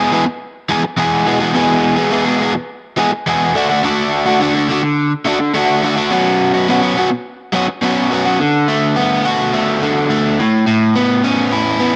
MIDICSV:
0, 0, Header, 1, 3, 480
1, 0, Start_track
1, 0, Tempo, 570342
1, 1299, Time_signature, 4, 2, 24, 8
1, 10065, End_track
2, 0, Start_track
2, 0, Title_t, "Overdriven electric guitar"
2, 0, Program_c, 0, 29
2, 0, Note_on_c, 0, 40, 78
2, 0, Note_on_c, 0, 47, 75
2, 0, Note_on_c, 0, 52, 45
2, 0, Note_on_c, 0, 56, 49
2, 0, Note_on_c, 0, 59, 51
2, 0, Note_on_c, 0, 68, 56
2, 91, Note_off_c, 0, 52, 0
2, 91, Note_off_c, 0, 56, 0
2, 94, Note_on_c, 0, 52, 58
2, 101, Note_off_c, 0, 59, 0
2, 101, Note_on_c, 0, 56, 63
2, 107, Note_off_c, 0, 68, 0
2, 111, Note_on_c, 0, 59, 65
2, 117, Note_on_c, 0, 68, 67
2, 208, Note_off_c, 0, 59, 0
2, 208, Note_off_c, 0, 68, 0
2, 210, Note_off_c, 0, 40, 0
2, 211, Note_off_c, 0, 56, 0
2, 213, Note_off_c, 0, 47, 0
2, 223, Note_off_c, 0, 52, 0
2, 579, Note_on_c, 0, 52, 56
2, 590, Note_on_c, 0, 56, 58
2, 593, Note_on_c, 0, 59, 66
2, 598, Note_on_c, 0, 68, 64
2, 700, Note_off_c, 0, 68, 0
2, 703, Note_off_c, 0, 56, 0
2, 703, Note_off_c, 0, 59, 0
2, 713, Note_off_c, 0, 52, 0
2, 815, Note_on_c, 0, 40, 77
2, 821, Note_on_c, 0, 47, 76
2, 824, Note_on_c, 0, 52, 85
2, 831, Note_on_c, 0, 56, 81
2, 833, Note_on_c, 0, 59, 84
2, 839, Note_on_c, 0, 68, 84
2, 1053, Note_off_c, 0, 52, 0
2, 1057, Note_off_c, 0, 56, 0
2, 1057, Note_on_c, 0, 52, 62
2, 1062, Note_off_c, 0, 59, 0
2, 1067, Note_on_c, 0, 56, 64
2, 1068, Note_off_c, 0, 68, 0
2, 1072, Note_on_c, 0, 59, 61
2, 1079, Note_on_c, 0, 68, 65
2, 1169, Note_off_c, 0, 68, 0
2, 1179, Note_off_c, 0, 59, 0
2, 1179, Note_on_c, 0, 68, 53
2, 1186, Note_off_c, 0, 56, 0
2, 1190, Note_on_c, 0, 59, 58
2, 1196, Note_on_c, 0, 56, 47
2, 1199, Note_off_c, 0, 52, 0
2, 1202, Note_on_c, 0, 52, 47
2, 1285, Note_off_c, 0, 40, 0
2, 1292, Note_off_c, 0, 47, 0
2, 1295, Note_on_c, 0, 40, 73
2, 1302, Note_off_c, 0, 56, 0
2, 1302, Note_on_c, 0, 47, 84
2, 1303, Note_off_c, 0, 52, 0
2, 1305, Note_off_c, 0, 59, 0
2, 1307, Note_on_c, 0, 52, 75
2, 1310, Note_off_c, 0, 68, 0
2, 1312, Note_on_c, 0, 56, 81
2, 1315, Note_on_c, 0, 59, 83
2, 1320, Note_on_c, 0, 68, 86
2, 1643, Note_off_c, 0, 68, 0
2, 1653, Note_on_c, 0, 68, 62
2, 1655, Note_off_c, 0, 59, 0
2, 1659, Note_off_c, 0, 56, 0
2, 1665, Note_on_c, 0, 59, 59
2, 1669, Note_on_c, 0, 56, 55
2, 1671, Note_off_c, 0, 52, 0
2, 1674, Note_on_c, 0, 52, 49
2, 1765, Note_off_c, 0, 40, 0
2, 1769, Note_off_c, 0, 47, 0
2, 1775, Note_on_c, 0, 40, 76
2, 1779, Note_off_c, 0, 56, 0
2, 1779, Note_on_c, 0, 47, 83
2, 1780, Note_off_c, 0, 52, 0
2, 1782, Note_off_c, 0, 59, 0
2, 1783, Note_on_c, 0, 52, 83
2, 1786, Note_off_c, 0, 68, 0
2, 1789, Note_on_c, 0, 56, 83
2, 1792, Note_on_c, 0, 59, 82
2, 1797, Note_on_c, 0, 68, 82
2, 1887, Note_off_c, 0, 68, 0
2, 1896, Note_off_c, 0, 59, 0
2, 1897, Note_on_c, 0, 68, 63
2, 1904, Note_off_c, 0, 56, 0
2, 1906, Note_on_c, 0, 59, 60
2, 1914, Note_on_c, 0, 56, 49
2, 1917, Note_off_c, 0, 52, 0
2, 1920, Note_on_c, 0, 52, 52
2, 2019, Note_off_c, 0, 52, 0
2, 2021, Note_off_c, 0, 56, 0
2, 2023, Note_on_c, 0, 52, 64
2, 2031, Note_off_c, 0, 59, 0
2, 2031, Note_on_c, 0, 56, 67
2, 2035, Note_off_c, 0, 68, 0
2, 2041, Note_on_c, 0, 59, 64
2, 2045, Note_on_c, 0, 68, 74
2, 2136, Note_off_c, 0, 68, 0
2, 2139, Note_off_c, 0, 59, 0
2, 2140, Note_off_c, 0, 40, 0
2, 2140, Note_off_c, 0, 56, 0
2, 2142, Note_off_c, 0, 47, 0
2, 2145, Note_off_c, 0, 52, 0
2, 2503, Note_on_c, 0, 52, 62
2, 2511, Note_on_c, 0, 56, 60
2, 2518, Note_on_c, 0, 59, 66
2, 2524, Note_on_c, 0, 68, 74
2, 2621, Note_off_c, 0, 68, 0
2, 2624, Note_off_c, 0, 59, 0
2, 2628, Note_off_c, 0, 52, 0
2, 2628, Note_off_c, 0, 56, 0
2, 2748, Note_on_c, 0, 40, 84
2, 2753, Note_on_c, 0, 47, 79
2, 2759, Note_on_c, 0, 52, 76
2, 2760, Note_on_c, 0, 56, 77
2, 2767, Note_on_c, 0, 59, 84
2, 2772, Note_on_c, 0, 68, 80
2, 2973, Note_off_c, 0, 40, 0
2, 2975, Note_off_c, 0, 47, 0
2, 2978, Note_off_c, 0, 52, 0
2, 2979, Note_off_c, 0, 56, 0
2, 2982, Note_off_c, 0, 59, 0
2, 2983, Note_on_c, 0, 50, 78
2, 2985, Note_off_c, 0, 68, 0
2, 2990, Note_on_c, 0, 57, 76
2, 2999, Note_on_c, 0, 62, 76
2, 3006, Note_on_c, 0, 66, 79
2, 3100, Note_off_c, 0, 66, 0
2, 3103, Note_on_c, 0, 66, 57
2, 3106, Note_off_c, 0, 62, 0
2, 3116, Note_off_c, 0, 57, 0
2, 3116, Note_on_c, 0, 62, 55
2, 3126, Note_on_c, 0, 57, 49
2, 3211, Note_off_c, 0, 50, 0
2, 3220, Note_off_c, 0, 57, 0
2, 3221, Note_on_c, 0, 50, 79
2, 3226, Note_off_c, 0, 62, 0
2, 3230, Note_on_c, 0, 57, 75
2, 3237, Note_on_c, 0, 62, 86
2, 3239, Note_off_c, 0, 66, 0
2, 3243, Note_on_c, 0, 66, 80
2, 3581, Note_off_c, 0, 66, 0
2, 3584, Note_on_c, 0, 66, 63
2, 3586, Note_off_c, 0, 62, 0
2, 3596, Note_off_c, 0, 57, 0
2, 3596, Note_on_c, 0, 62, 53
2, 3606, Note_on_c, 0, 57, 50
2, 3694, Note_off_c, 0, 50, 0
2, 3704, Note_on_c, 0, 50, 79
2, 3705, Note_off_c, 0, 57, 0
2, 3711, Note_off_c, 0, 62, 0
2, 3715, Note_on_c, 0, 57, 81
2, 3722, Note_on_c, 0, 62, 78
2, 3725, Note_off_c, 0, 66, 0
2, 3728, Note_on_c, 0, 66, 79
2, 3819, Note_off_c, 0, 66, 0
2, 3823, Note_on_c, 0, 66, 58
2, 3826, Note_off_c, 0, 62, 0
2, 3836, Note_on_c, 0, 62, 53
2, 3838, Note_off_c, 0, 57, 0
2, 3848, Note_on_c, 0, 57, 47
2, 3936, Note_off_c, 0, 50, 0
2, 3944, Note_off_c, 0, 57, 0
2, 3946, Note_on_c, 0, 50, 61
2, 3954, Note_off_c, 0, 62, 0
2, 3954, Note_on_c, 0, 57, 67
2, 3964, Note_off_c, 0, 66, 0
2, 3964, Note_on_c, 0, 62, 71
2, 3967, Note_on_c, 0, 66, 68
2, 4060, Note_off_c, 0, 62, 0
2, 4062, Note_off_c, 0, 66, 0
2, 4063, Note_off_c, 0, 57, 0
2, 4308, Note_off_c, 0, 50, 0
2, 4418, Note_on_c, 0, 50, 54
2, 4425, Note_on_c, 0, 57, 68
2, 4434, Note_on_c, 0, 62, 70
2, 4442, Note_on_c, 0, 66, 71
2, 4537, Note_off_c, 0, 62, 0
2, 4542, Note_off_c, 0, 57, 0
2, 4542, Note_off_c, 0, 66, 0
2, 4654, Note_off_c, 0, 50, 0
2, 4664, Note_on_c, 0, 50, 75
2, 4669, Note_on_c, 0, 57, 80
2, 4678, Note_on_c, 0, 62, 74
2, 4682, Note_on_c, 0, 66, 82
2, 4894, Note_off_c, 0, 50, 0
2, 4900, Note_off_c, 0, 57, 0
2, 4904, Note_on_c, 0, 50, 58
2, 4908, Note_off_c, 0, 62, 0
2, 4910, Note_on_c, 0, 57, 66
2, 4918, Note_on_c, 0, 62, 65
2, 4924, Note_off_c, 0, 66, 0
2, 4928, Note_on_c, 0, 66, 66
2, 5014, Note_off_c, 0, 66, 0
2, 5017, Note_on_c, 0, 66, 64
2, 5019, Note_off_c, 0, 62, 0
2, 5027, Note_off_c, 0, 57, 0
2, 5029, Note_on_c, 0, 62, 50
2, 5037, Note_on_c, 0, 57, 52
2, 5132, Note_off_c, 0, 50, 0
2, 5135, Note_off_c, 0, 62, 0
2, 5138, Note_on_c, 0, 47, 75
2, 5139, Note_off_c, 0, 57, 0
2, 5146, Note_on_c, 0, 54, 79
2, 5154, Note_on_c, 0, 59, 81
2, 5155, Note_on_c, 0, 61, 85
2, 5159, Note_off_c, 0, 66, 0
2, 5162, Note_on_c, 0, 66, 84
2, 5493, Note_off_c, 0, 66, 0
2, 5503, Note_on_c, 0, 66, 63
2, 5506, Note_off_c, 0, 61, 0
2, 5516, Note_off_c, 0, 59, 0
2, 5516, Note_on_c, 0, 61, 50
2, 5526, Note_on_c, 0, 59, 52
2, 5610, Note_off_c, 0, 47, 0
2, 5620, Note_off_c, 0, 54, 0
2, 5620, Note_on_c, 0, 47, 73
2, 5625, Note_off_c, 0, 59, 0
2, 5629, Note_off_c, 0, 61, 0
2, 5630, Note_on_c, 0, 54, 75
2, 5632, Note_off_c, 0, 66, 0
2, 5635, Note_on_c, 0, 59, 78
2, 5639, Note_on_c, 0, 61, 86
2, 5642, Note_on_c, 0, 66, 79
2, 5729, Note_off_c, 0, 66, 0
2, 5739, Note_on_c, 0, 66, 57
2, 5741, Note_off_c, 0, 61, 0
2, 5751, Note_off_c, 0, 59, 0
2, 5751, Note_on_c, 0, 61, 59
2, 5761, Note_on_c, 0, 59, 52
2, 5850, Note_off_c, 0, 54, 0
2, 5858, Note_off_c, 0, 59, 0
2, 5860, Note_on_c, 0, 54, 63
2, 5865, Note_off_c, 0, 61, 0
2, 5868, Note_on_c, 0, 59, 67
2, 5870, Note_off_c, 0, 66, 0
2, 5875, Note_on_c, 0, 61, 66
2, 5881, Note_on_c, 0, 66, 75
2, 5974, Note_off_c, 0, 66, 0
2, 5976, Note_off_c, 0, 61, 0
2, 5977, Note_off_c, 0, 59, 0
2, 5978, Note_off_c, 0, 54, 0
2, 5985, Note_off_c, 0, 47, 0
2, 6341, Note_on_c, 0, 54, 61
2, 6350, Note_on_c, 0, 59, 60
2, 6357, Note_on_c, 0, 61, 70
2, 6362, Note_on_c, 0, 66, 65
2, 6457, Note_off_c, 0, 66, 0
2, 6461, Note_off_c, 0, 61, 0
2, 6464, Note_off_c, 0, 59, 0
2, 6467, Note_off_c, 0, 54, 0
2, 6580, Note_on_c, 0, 47, 66
2, 6589, Note_on_c, 0, 54, 74
2, 6595, Note_on_c, 0, 59, 79
2, 6599, Note_on_c, 0, 61, 72
2, 6606, Note_on_c, 0, 66, 80
2, 6814, Note_off_c, 0, 54, 0
2, 6823, Note_off_c, 0, 59, 0
2, 6824, Note_on_c, 0, 54, 61
2, 6830, Note_off_c, 0, 61, 0
2, 6833, Note_on_c, 0, 59, 60
2, 6835, Note_off_c, 0, 66, 0
2, 6840, Note_on_c, 0, 61, 66
2, 6845, Note_on_c, 0, 66, 71
2, 6933, Note_off_c, 0, 66, 0
2, 6943, Note_on_c, 0, 66, 60
2, 6947, Note_off_c, 0, 61, 0
2, 6954, Note_off_c, 0, 59, 0
2, 6957, Note_on_c, 0, 61, 49
2, 6964, Note_on_c, 0, 59, 49
2, 7049, Note_off_c, 0, 47, 0
2, 7050, Note_off_c, 0, 66, 0
2, 7051, Note_off_c, 0, 54, 0
2, 7058, Note_off_c, 0, 61, 0
2, 7061, Note_off_c, 0, 59, 0
2, 7070, Note_on_c, 0, 50, 65
2, 7305, Note_on_c, 0, 57, 59
2, 7544, Note_on_c, 0, 59, 66
2, 7785, Note_on_c, 0, 66, 67
2, 8014, Note_off_c, 0, 57, 0
2, 8024, Note_on_c, 0, 57, 64
2, 8258, Note_off_c, 0, 50, 0
2, 8268, Note_on_c, 0, 50, 60
2, 8490, Note_off_c, 0, 57, 0
2, 8500, Note_on_c, 0, 57, 61
2, 8739, Note_off_c, 0, 57, 0
2, 8740, Note_off_c, 0, 66, 0
2, 8743, Note_off_c, 0, 50, 0
2, 8744, Note_on_c, 0, 45, 61
2, 8769, Note_off_c, 0, 59, 0
2, 8970, Note_off_c, 0, 45, 0
2, 8980, Note_on_c, 0, 45, 69
2, 9223, Note_on_c, 0, 59, 65
2, 9459, Note_on_c, 0, 61, 64
2, 9698, Note_on_c, 0, 64, 71
2, 9927, Note_off_c, 0, 59, 0
2, 9931, Note_on_c, 0, 59, 68
2, 10065, Note_off_c, 0, 45, 0
2, 10065, Note_off_c, 0, 59, 0
2, 10065, Note_off_c, 0, 61, 0
2, 10065, Note_off_c, 0, 64, 0
2, 10065, End_track
3, 0, Start_track
3, 0, Title_t, "Muted overdriven electric guitar strokes"
3, 218, Note_on_c, 9, 29, 38
3, 302, Note_off_c, 9, 29, 0
3, 710, Note_on_c, 9, 29, 41
3, 794, Note_off_c, 9, 29, 0
3, 2146, Note_on_c, 9, 29, 43
3, 2230, Note_off_c, 9, 29, 0
3, 2632, Note_on_c, 9, 29, 43
3, 2716, Note_off_c, 9, 29, 0
3, 4066, Note_on_c, 9, 29, 46
3, 4150, Note_off_c, 9, 29, 0
3, 4545, Note_on_c, 9, 29, 43
3, 4629, Note_off_c, 9, 29, 0
3, 5984, Note_on_c, 9, 29, 43
3, 6068, Note_off_c, 9, 29, 0
3, 6468, Note_on_c, 9, 29, 43
3, 6552, Note_off_c, 9, 29, 0
3, 10065, End_track
0, 0, End_of_file